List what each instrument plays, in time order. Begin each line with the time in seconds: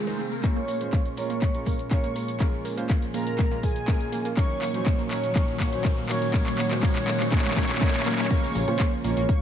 Already playing: analog synth pad C3 D#3 G#3 F4 G#4, analog synth lead G#4, synth texture C6, riser
0.07 grand piano G#3 C4 D#4 C5, synth pluck A#4
0.19 synth pluck C4
0.32 synth pluck A#4
0.44 analog synth pad A#2 F3 G#3 C#4 G#4, grand piano G#3 C#4 F4 A#4, synth pluck A#3, analog synth lead C#5, supersaw synth C#6, kick, clap, closed hi-hat, riser, maracas
0.56 synth pluck A#3, maracas
0.68 synth pluck A#3, open hi-hat, maracas
0.81 grand piano G#3 C#4 F4 C5, closed hi-hat, maracas
0.93 synth pluck A#3, kick, clap, closed hi-hat, maracas
1.05 closed hi-hat, maracas
1.17 grand piano G#3 C#4 F4 A#4, synth pluck A#3, analog synth lead C#5, supersaw synth C#6, open hi-hat, maracas
1.30 synth pluck A#3, closed hi-hat, maracas
1.42 synth pluck A#3, kick, clap, closed hi-hat, maracas
1.54 grand piano G#3 C#4 F4 A#4, closed hi-hat, maracas
1.66 synth pluck A#3, kick, open hi-hat, maracas
1.79 closed hi-hat, maracas
1.91 grand piano G#3 C#4 F4 A#4, synth pluck A#3, analog synth lead C#5, supersaw synth C#6, kick, clap, closed hi-hat, maracas
2.04 synth pluck A#3, closed hi-hat, maracas
2.16 synth pluck A#3, open hi-hat, maracas
2.28 closed hi-hat, maracas
2.40 grand piano G#3 C#4 F4 A#4, synth pluck A#3, kick, clap, closed hi-hat, maracas
2.52 maracas
2.65 synth pluck A#3, open hi-hat, maracas
2.77 grand piano G#3 C#4 F4 C5, synth pluck A#3, closed hi-hat, maracas
2.89 synth pluck A#3, kick, clap, closed hi-hat, maracas
3.02 closed hi-hat, maracas
3.14 grand piano G#3 C#4 F4 A#4, synth pluck A#3, analog synth lead A#4, supersaw synth A#5, open hi-hat, maracas
3.27 closed hi-hat, maracas
3.39 synth pluck A#3, kick, clap, closed hi-hat, maracas
3.51 grand piano G#3 C#4 F4 A#4, synth pluck A#3, closed hi-hat, maracas
3.63 synth pluck A#3, analog synth lead G#4, supersaw synth G#5, kick, open hi-hat, maracas
3.76 closed hi-hat, maracas
3.88 grand piano G#3 C#4 F4 A#4, synth pluck A#3, kick, clap, closed hi-hat, maracas
4.00 closed hi-hat, maracas
4.12 synth pluck A#3, open hi-hat, maracas
4.25 synth pluck A#3, closed hi-hat, maracas
4.37 analog synth pad A#2 D#3 F#3 C#4 F#4, grand piano F#3 C#4 D#4 A#4, synth pluck A#3, analog synth lead C#5, supersaw synth C#6, kick, clap, closed hi-hat, maracas
4.50 maracas
4.61 synth pluck A#3, clap, open hi-hat, maracas
4.74 grand piano F#3 C#4 D#4 C5, closed hi-hat, maracas
4.86 synth pluck A#3, kick, clap, closed hi-hat, maracas
4.99 synth pluck A#3, closed hi-hat, maracas
5.11 grand piano F#3 C#4 D#4 A#4, synth pluck A#3, analog synth lead C#5, supersaw synth C#6, clap, open hi-hat, maracas
5.24 closed hi-hat, maracas
5.35 grand piano F#3 C#4 D#4 A#4, synth pluck A#3, analog synth lead C#5, supersaw synth C#6, kick, clap, closed hi-hat, maracas
5.48 closed hi-hat, maracas
5.60 synth pluck A#3, kick, clap, open hi-hat, maracas
5.73 grand piano F#3 C#4 D#4 C5, closed hi-hat, maracas
5.85 synth pluck A#3, kick, clap, closed hi-hat, maracas
5.97 synth pluck A#3, closed hi-hat, maracas
6.09 grand piano F#3 C#4 D#4 A#4, synth pluck A#3, analog synth lead C#5, supersaw synth C#6, clap, open hi-hat, maracas
6.22 closed hi-hat, maracas
6.34 grand piano F#3 C#4 D#4 A#4, synth pluck A#3, analog synth lead C#5, supersaw synth C#6, kick, clap, closed hi-hat, maracas
6.46 clap, closed hi-hat, maracas
6.58 synth pluck A#3, clap, open hi-hat, maracas
6.71 grand piano F#3 C#4 D#4 C5, clap, closed hi-hat, maracas
6.83 grand piano F#3 C#4 D#4 A#4, synth pluck A#3, analog synth lead C#5, supersaw synth C#6, kick, clap, closed hi-hat, maracas
6.95 clap, closed hi-hat, maracas
7.07 synth pluck A#3, clap, open hi-hat, maracas
7.20 grand piano F#3 C#4 D#4 C5, clap, closed hi-hat, maracas
7.32 grand piano F#3 C#4 D#4 A#4, synth pluck A#3, analog synth lead C#5, supersaw synth C#6, kick, clap, closed hi-hat, maracas
7.38 clap
7.45 clap, closed hi-hat, maracas
7.51 clap
7.57 grand piano F#3 C#4 D#4 A#4, synth pluck A#3, analog synth lead C#5, supersaw synth C#6, kick, clap, open hi-hat, maracas
7.63 clap
7.69 clap, closed hi-hat, maracas
7.75 clap
7.81 grand piano F#3 C#4 D#4 A#4, synth pluck A#3, analog synth lead C#5, supersaw synth C#6, kick, clap, closed hi-hat, maracas
7.88 clap
7.94 clap, closed hi-hat, maracas
8.00 clap
8.06 grand piano F#3 C#4 D#4 A#4, synth pluck A#3, analog synth lead C#5, supersaw synth C#6, clap, open hi-hat, maracas
8.12 clap
8.19 clap, closed hi-hat, maracas
8.25 clap
8.30 analog synth pad C#3 F3 G#3 A#3 F4, grand piano G#3 C#4 F4 A#4, synth pluck A#3, analog synth lead C#5, supersaw synth C#6, kick, closed hi-hat, crash, maracas
8.43 synth pluck A#3, maracas
8.55 analog synth bass A#1, synth pluck A#3, open hi-hat, maracas
8.68 analog synth bass A#2, grand piano G#3 C#4 F4 C5, cross-stick, closed hi-hat, maracas
8.79 synth pluck A#3, kick, clap, closed hi-hat, maracas
8.93 maracas
9.04 analog synth bass A#1, grand piano G#3 C#4 F4 A#4, synth pluck A#3, analog synth lead C#5, supersaw synth C#6, open hi-hat, maracas
9.17 analog synth bass A#1, synth pluck A#3, closed hi-hat, maracas
9.29 synth pluck A#3, kick, closed hi-hat, maracas